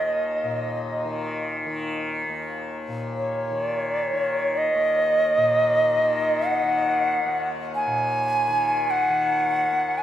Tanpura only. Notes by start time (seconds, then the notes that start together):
Already playing: D#2 A#2 D#3
0.44 A#2
1.04 D#3
1.66 D#3
2.29 D#2
2.88 A#2
3.51 D#3
4.13 D#3
4.75 D#2
5.37 A#2
5.99 D#3
6.63 D#3
7.25 D#2
7.86 A#2
8.48 D#3
9.10 D#3
9.71 D#2